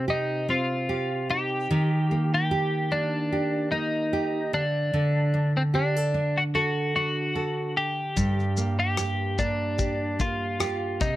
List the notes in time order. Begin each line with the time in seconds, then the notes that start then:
Already playing: C3 C4
0.08 D#4 G4
0.49 C4 F4
0.89 G4
1.29 D#4 G4
1.71 D#3
2.11 A#3
2.34 G4
2.51 G4
2.92 A#3 D4
3.32 G4
3.72 A#3 D#4
4.13 G4
4.53 D3 D4
4.94 D3
5.34 D4
5.57 C4
5.74 D4 G4
5.97 A4
6.14 D4
6.38 F#4
6.55 F#4 A4
6.96 D4 F#4
7.35 A4
7.77 G4
8.16 G2, kick, shaker
8.39 cross-stick
8.57 A#3, shaker
8.80 G4
8.97 G4, cross-stick, shaker
9.39 A#3 D4, kick, shaker
9.78 G4, kick, shaker
10.19 A#3 F4, kick, shaker
10.60 G4, cross-stick, shaker
11.00 C3 D#4, kick, shaker